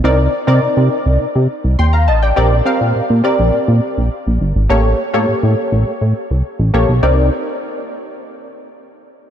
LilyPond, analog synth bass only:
\new Staff \with { instrumentName = "Analog synth bass" } { \clef bass \time 4/4 \key c \dorian \tempo 4 = 103 c,8 r16 c16 c16 c16 r16 c,16 r16 c16 r16 c,16 ees,8 a,,8 | bes,,8 r16 bes,16 bes,16 bes,16 r16 bes,,16 bes,16 bes,16 r16 bes,,16 r16 bes,,16 g,,16 aes,,16 | a,,8 r16 a,16 a,16 a,16 r16 a,,16 r16 a,16 r16 c,16 r16 a,,16 bes,,16 b,,16 | c,8 r2. r8 | }